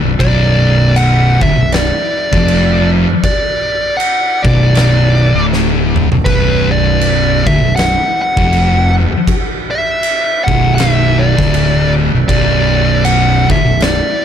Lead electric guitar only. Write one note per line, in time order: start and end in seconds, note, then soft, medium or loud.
0.20 0.98 D5 medium
0.96 1.42 F#5 loud
1.42 1.73 E5 loud
1.73 2.89 D5 medium
3.24 4.02 D5 medium
3.97 4.45 F#5 loud
4.43 5.45 D5 medium
6.25 6.67 B4 medium
6.71 7.49 D5 medium
7.47 7.75 E5 loud
7.76 8.21 F#5 loud
8.22 8.93 F#5 loud
9.71 10.44 E5 loud
10.44 10.75 F#5 loud
10.75 10.94 F5 medium
10.94 11.23 E5 medium
11.19 11.93 D5 medium
12.28 13.07 D5 medium
13.05 13.47 F#5 loud
13.51 13.82 E5 loud
13.82 14.25 D5 medium